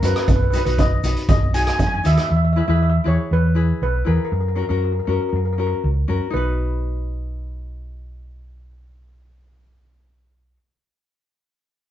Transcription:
0.02 F#2 C#4 F#4 A#4 B4, closed hi-hat, shaker
0.14 B4, cross-stick, closed hi-hat, shaker
0.21 B4
0.28 B1 B4, kick, closed hi-hat, shaker
0.36 B4
0.43 B4
0.50 D#4 F#4 B4, closed hi-hat, shaker
0.54 B4
0.65 B1 D#4 F#4 B4, closed hi-hat
0.78 D#5, kick, closed hi-hat, shaker
1.03 B1 D#4 F#4 B4, closed hi-hat, shaker
1.17 closed hi-hat
1.28 B1 D#5, kick, closed hi-hat, shaker
1.54 D#4 F#4 G#4 G#5, closed hi-hat, shaker
1.62 G#5
1.67 G#5, cross-stick, closed hi-hat
1.79 F#2 G#5, kick, closed hi-hat, shaker
1.87 G#5
1.94 G#5
2.04 D#2 D#4 F#4 B4 E5, closed hi-hat, shaker
2.15 E5, cross-stick, closed hi-hat, shaker
2.22 E5
2.29 E2 E5
2.37 E5
2.45 E5
2.53 E4 G#4 E5
2.57 B4 E5
2.68 E2 E4 G#4 B4 E5
2.75 E5
2.83 E5
2.90 E5
3.04 E2 E4 G#4 B4 C#5
3.31 E2 B4
3.55 E4 G#4 B4
3.82 B1 B4
4.05 E2 E4 G#4 A#4 B4
4.16 A#4
4.25 A#4
4.32 F#2 A#4
4.41 A#4
4.48 A#4
4.55 C#4 F#4 A#4
4.62 A#4
4.69 F#2 C#4 F#4 A#4
4.77 A#4
4.84 A#4
4.92 A#4
4.99 A#4
5.05 F#2 C#4 F#4 A#4
5.13 A#4
5.21 A#4
5.29 F#2 A#4
5.36 A#4
5.45 A#4
5.53 A#4
5.58 C#4 F#4 A#4
5.67 A#4
5.84 C#2
6.08 F#2 C#4 F#4 A#4
6.30 B1 D#4 F#4 B4
6.36 B4

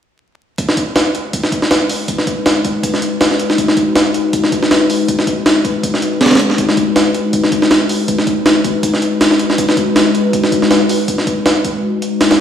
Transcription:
0.58 kick, closed hi-hat
0.69 snare
0.77 kick, closed hi-hat
0.96 snare, closed hi-hat
1.15 closed hi-hat
1.33 kick, closed hi-hat
1.43 snare
1.52 kick, closed hi-hat
1.62 snare
1.71 snare, closed hi-hat
1.90 open hi-hat
2.08 kick, closed hi-hat
2.18 snare
2.27 kick, closed hi-hat
2.46 snare, closed hi-hat
2.65 kick, closed hi-hat
2.83 kick, closed hi-hat
2.94 snare
3.02 closed hi-hat
3.21 snare, closed hi-hat
3.31 snare
3.40 closed hi-hat
3.50 snare
3.58 kick, closed hi-hat
3.68 snare
3.77 kick, closed hi-hat
3.96 snare, closed hi-hat
4.14 closed hi-hat
4.33 kick, closed hi-hat
4.44 snare
4.52 kick, closed hi-hat
4.63 snare
4.71 snare, closed hi-hat
4.90 open hi-hat
5.08 kick, closed hi-hat
5.19 snare
5.27 kick, closed hi-hat
5.46 snare, closed hi-hat
5.65 kick, closed hi-hat
5.83 kick, closed hi-hat
5.94 snare
6.02 closed hi-hat
6.21 snare, closed hi-hat
6.26 snare, closed hi-hat
6.31 snare, closed hi-hat
6.35 snare, closed hi-hat
6.39 closed hi-hat
6.50 snare
6.58 kick, closed hi-hat
6.69 snare
6.77 kick, closed hi-hat
6.96 snare, closed hi-hat
7.14 closed hi-hat
7.33 kick, closed hi-hat
7.44 snare
7.52 kick, closed hi-hat
7.62 snare
7.71 snare, closed hi-hat
7.89 open hi-hat
8.08 kick, closed hi-hat
8.18 snare
8.27 kick, closed hi-hat
8.46 snare, closed hi-hat
8.64 kick, closed hi-hat
8.83 kick, closed hi-hat
8.94 snare
9.02 closed hi-hat
9.21 snare, closed hi-hat
9.31 snare
9.39 closed hi-hat
9.50 snare
9.58 kick, closed hi-hat
9.69 snare
9.77 kick, closed hi-hat
9.96 snare, closed hi-hat
10.15 closed hi-hat
10.33 kick, closed hi-hat
10.44 snare
10.52 kick, closed hi-hat
10.62 snare
10.71 snare, closed hi-hat
10.89 open hi-hat
11.08 kick, closed hi-hat
11.18 snare
11.27 kick, closed hi-hat
11.46 snare, closed hi-hat
11.64 kick, closed hi-hat
12.02 closed hi-hat
12.21 snare, closed hi-hat
12.31 snare, closed hi-hat

